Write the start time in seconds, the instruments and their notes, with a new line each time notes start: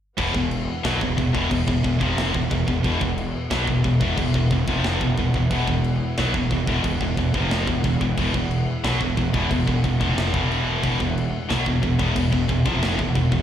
0.18 picked electric bass E1, distorted electric guitar E2 B2, string section B3 E4 F#5, kick, crash
0.35 picked electric bass E1, distorted electric guitar E2 B2, kick
0.51 crash
0.84 picked electric bass B1, distorted electric guitar B2 F#3, snare, crash
1.00 picked electric bass E1, distorted electric guitar E2 B2, kick
1.17 picked electric bass E1, distorted electric guitar E2 B2, kick, crash
1.33 picked electric bass E1, distorted electric guitar E2 B2, kick
1.50 picked electric bass E1, distorted electric guitar E2 B2, kick, crash
1.67 picked electric bass E1, distorted electric guitar E2 B2, kick
1.84 picked electric bass E1, distorted electric guitar E2 B2, kick, crash
2.00 picked electric bass F1, distorted electric guitar F2 C3 F3, kick
2.18 snare, crash
2.34 picked electric bass E1, distorted electric guitar E2 B2, kick
2.51 picked electric bass E1, distorted electric guitar E2 B2, kick, crash
2.68 picked electric bass E1, distorted electric guitar E2 B2, kick
2.84 picked electric bass E1, distorted electric guitar E2 B2, kick, crash
3.01 picked electric bass E1, distorted electric guitar E2 B2, kick
3.18 crash
3.51 picked electric bass B1, distorted electric guitar B2 F#3, snare, crash
3.67 picked electric bass E1, distorted electric guitar E2 B2, kick
3.84 picked electric bass E1, distorted electric guitar E2 B2, kick, crash
4.01 picked electric bass E1, distorted electric guitar E2 B2, kick
4.18 picked electric bass E1, distorted electric guitar E2 B2, kick, crash
4.34 picked electric bass E1, distorted electric guitar E2 B2, kick
4.51 picked electric bass E1, distorted electric guitar E2 B2, kick, crash
4.68 picked electric bass F1, distorted electric guitar F2 C3 F3, kick
4.84 snare, crash
5.01 picked electric bass E1, distorted electric guitar E2 B2, kick
5.17 picked electric bass E1, distorted electric guitar E2 B2, kick, crash
5.34 picked electric bass E1, distorted electric guitar E2 B2, kick
5.51 picked electric bass E1, distorted electric guitar E2 B2, kick, crash
5.68 picked electric bass E1, distorted electric guitar E2 B2, kick
5.84 crash
6.17 picked electric bass B1, distorted electric guitar B2 F#3, snare, crash
6.34 picked electric bass E1, distorted electric guitar E2 B2, kick
6.51 picked electric bass E1, distorted electric guitar E2 B2, kick, crash
6.67 picked electric bass E1, distorted electric guitar E2 B2, kick
6.84 picked electric bass E1, distorted electric guitar E2 B2, kick, crash
7.01 picked electric bass E1, distorted electric guitar E2 B2, kick
7.17 picked electric bass E1, distorted electric guitar E2 B2, kick, crash
7.34 picked electric bass F1, distorted electric guitar F2 C3 F3, kick
7.51 snare, crash
7.67 picked electric bass E1, distorted electric guitar E2 B2, kick
7.84 picked electric bass E1, distorted electric guitar E2 B2, kick, crash
8.01 picked electric bass E1, distorted electric guitar E2 B2, kick
8.18 picked electric bass E1, distorted electric guitar E2 B2, kick, crash
8.33 picked electric bass E1, distorted electric guitar E2 B2, kick
8.51 crash
8.84 picked electric bass B1, distorted electric guitar B2 F#3, snare, crash
9.00 picked electric bass E1, distorted electric guitar E2 B2, kick
9.17 picked electric bass E1, distorted electric guitar E2 B2, kick, crash
9.33 picked electric bass E1, distorted electric guitar E2 B2, kick
9.51 picked electric bass E1, distorted electric guitar E2 B2, kick, crash
9.67 picked electric bass E1, distorted electric guitar E2 B2, kick
9.84 picked electric bass E1, distorted electric guitar E2 B2, kick, crash
10.00 picked electric bass F1, distorted electric guitar F2 C3 F3, kick
10.18 snare, crash
10.33 picked electric bass E1, distorted electric guitar E2 B2 E3, kick
10.52 crash
10.83 picked electric bass E1, distorted electric guitar E2 B2, string section A3, kick, crash
11.00 picked electric bass E1, distorted electric guitar E2 B2, kick
11.18 crash
11.49 picked electric bass B1, distorted electric guitar B2 F#3, snare, crash
11.66 picked electric bass E1, distorted electric guitar E2 B2, kick
11.82 picked electric bass E1, distorted electric guitar E2 B2, kick, crash
11.99 picked electric bass E1, distorted electric guitar E2 B2, kick
12.15 picked electric bass E1, distorted electric guitar E2 B2, kick, crash
12.32 picked electric bass E1, distorted electric guitar E2 B2, kick
12.48 picked electric bass E1, distorted electric guitar E2 B2, kick, crash
12.65 picked electric bass F1, distorted electric guitar F2 C3 F3, kick
12.83 snare, crash
12.99 picked electric bass E1, distorted electric guitar E2 B2, kick
13.15 picked electric bass E1, distorted electric guitar E2 B2, kick, crash
13.32 picked electric bass E1, distorted electric guitar E2 B2, kick